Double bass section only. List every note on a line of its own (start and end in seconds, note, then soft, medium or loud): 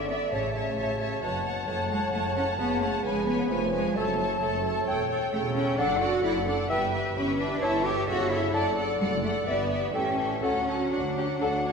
0.00 0.26 G#1 soft
0.32 0.72 A1 soft
0.77 1.17 A1 soft
1.22 1.62 F#1 soft
1.67 2.08 F#1 soft
2.13 2.53 F#1 soft
2.58 2.99 F#1 soft
3.05 3.45 F1 soft
3.50 3.90 F1 soft
3.96 4.36 F#1 soft
4.41 4.81 F#1 medium
4.87 5.27 E1 soft
5.33 5.73 E1 medium
5.78 6.18 F#1 medium
6.24 6.64 F#1 medium
6.70 7.10 G1 medium
7.16 7.57 G1 medium
7.62 8.03 G1 medium
8.08 8.48 G1 medium
8.53 8.94 F#1 medium
8.99 9.41 F#1 medium
9.46 9.88 G1 medium
9.93 10.36 A1 soft
10.43 10.86 D2 soft
10.92 11.36 D2 soft
11.42 11.72 D2 soft